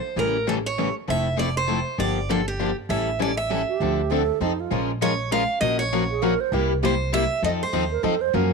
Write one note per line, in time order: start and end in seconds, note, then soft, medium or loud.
0.00 0.19 C5 medium
0.16 0.89 A1 medium
0.16 0.36 C#3 medium
0.16 0.36 E3 medium
0.16 0.36 G3 medium
0.16 0.36 A3 medium
0.16 0.36 C#4 medium
0.16 0.37 E4 medium
0.16 0.36 G4 medium
0.16 0.37 A4 medium
0.16 0.48 A#4 medium
0.47 0.57 C#3 medium
0.47 0.58 E3 medium
0.47 0.58 G3 medium
0.47 0.58 A3 medium
0.47 0.58 C#4 medium
0.47 0.58 E4 medium
0.47 0.58 G4 medium
0.47 0.58 A4 medium
0.47 0.54 A4 medium
0.66 0.94 C#5 medium
0.78 0.88 C#3 medium
0.78 0.88 E3 medium
0.78 0.88 G3 medium
0.78 0.88 A3 medium
0.78 0.88 C#4 medium
0.78 0.89 E4 medium
0.78 0.89 G4 medium
0.78 0.89 A4 medium
1.07 1.81 F1 medium
1.07 1.27 F3 medium
1.07 1.27 A3 medium
1.07 1.27 C4 medium
1.07 1.27 E4 medium
1.07 1.27 A4 medium
1.07 1.37 E5 medium
1.37 1.48 F3 medium
1.37 1.48 A3 medium
1.37 1.48 C4 medium
1.37 1.48 E4 medium
1.37 1.48 A4 loud
1.37 1.55 D5 medium
1.57 1.99 C5 medium
1.67 1.79 F3 medium
1.67 1.78 A3 medium
1.67 1.79 C4 medium
1.67 1.79 E4 medium
1.67 1.79 A4 medium
1.98 2.71 G1 medium
1.98 2.18 D3 medium
1.98 2.18 F3 medium
1.98 2.18 A#3 medium
1.98 2.18 D4 medium
1.98 2.18 G4 medium
1.98 2.30 D5 medium
2.29 2.40 D3 medium
2.29 2.40 F3 medium
2.29 2.40 A#3 medium
2.29 2.40 D4 loud
2.29 2.40 G4 medium
2.29 2.46 A4 medium
2.48 2.76 G4 medium
2.59 2.70 D3 medium
2.59 2.70 F3 medium
2.59 2.70 A#3 medium
2.59 2.70 D4 medium
2.59 2.70 G4 medium
2.89 3.62 A1 medium
2.89 3.09 E3 medium
2.89 3.09 G3 medium
2.89 3.09 C#4 medium
2.89 3.09 E4 medium
2.89 3.09 A4 medium
2.89 3.21 E5 medium
3.20 3.30 E3 medium
3.20 3.30 G3 medium
3.20 3.31 C#4 medium
3.20 3.31 E4 medium
3.20 3.31 A4 medium
3.20 3.37 D5 medium
3.37 4.37 E5 medium
3.50 3.61 E3 medium
3.50 3.61 G3 medium
3.50 3.61 C#4 medium
3.50 3.61 E4 medium
3.50 3.61 A4 medium
3.68 4.13 G4 medium
3.80 4.29 D2 medium
3.80 4.00 D3 medium
3.80 4.00 F3 medium
3.80 4.01 C4 medium
3.80 4.01 D4 medium
3.80 4.01 A4 medium
4.11 4.22 D3 medium
4.11 4.22 F3 medium
4.11 4.22 C4 medium
4.11 4.22 D4 medium
4.11 4.41 A4 loud
4.11 4.22 A4 medium
4.40 4.65 F2 medium
4.40 4.51 F3 medium
4.40 4.52 C4 medium
4.40 4.52 D#4 medium
4.40 4.62 D#4 medium
4.40 4.52 A4 medium
4.60 4.72 F4 medium
4.71 5.44 A#1 medium
4.71 4.90 F3 medium
4.71 4.91 G#3 medium
4.71 4.91 C#4 medium
4.71 4.91 F4 medium
4.71 4.91 A#4 medium
5.01 5.12 F3 medium
5.01 5.12 G#3 medium
5.01 5.12 C#4 medium
5.01 5.12 F4 medium
5.01 5.12 A#4 medium
5.01 5.30 C#5 medium
5.31 5.42 F3 medium
5.31 5.42 G#3 medium
5.31 5.42 C#4 medium
5.31 5.42 F4 medium
5.31 5.43 A#4 medium
5.31 5.60 F5 loud
5.61 6.34 A#1 medium
5.61 5.81 F3 medium
5.61 5.81 A#3 medium
5.61 5.81 C#4 medium
5.61 5.81 F#4 medium
5.61 5.81 A#4 medium
5.61 5.78 D#5 medium
5.79 6.36 C#5 medium
5.92 6.03 F3 medium
5.92 6.03 A#3 medium
5.92 6.03 C#4 medium
5.92 6.03 F#4 medium
5.92 6.03 A#4 medium
6.11 6.24 G#4 medium
6.22 6.33 F3 medium
6.22 6.33 A#3 medium
6.22 6.33 C#4 medium
6.22 6.33 F#4 medium
6.22 6.42 A#4 loud
6.22 6.33 A#4 medium
6.41 6.55 C5 loud
6.52 7.25 C2 medium
6.52 6.72 C3 medium
6.52 6.72 G3 medium
6.52 6.72 A#3 medium
6.52 6.72 E4 medium
6.52 6.73 G4 medium
6.52 6.77 A#4 medium
6.83 6.93 C3 medium
6.83 6.94 G3 medium
6.83 6.94 A#3 medium
6.83 6.94 E4 loud
6.83 6.94 G4 loud
6.83 7.13 C5 medium
7.12 7.23 C3 medium
7.12 7.23 G3 loud
7.12 7.24 A#3 medium
7.12 7.24 E4 medium
7.12 7.24 G4 medium
7.12 7.41 E5 loud
7.42 7.67 F2 medium
7.42 7.62 F3 medium
7.42 7.62 C4 medium
7.42 7.63 D#4 medium
7.42 7.63 A4 medium
7.42 7.49 D#5 medium
7.63 8.18 C5 medium
7.73 7.99 D#2 medium
7.73 7.84 F3 medium
7.73 7.84 C4 medium
7.73 7.84 D#4 medium
7.73 7.84 A4 medium
7.91 8.05 A#4 medium
8.03 8.29 F2 medium
8.03 8.14 F3 medium
8.03 8.14 C4 medium
8.03 8.14 D#4 medium
8.03 8.23 A4 medium
8.03 8.14 A4 medium
8.21 8.37 C5 loud
8.33 8.53 F#2 medium
8.33 8.53 C#3 medium
8.33 8.53 F3 medium
8.33 8.53 F#3 medium
8.33 8.53 A#3 medium
8.33 8.53 C#4 medium
8.33 8.53 F4 medium
8.33 8.53 F#4 medium
8.33 8.53 A#4 medium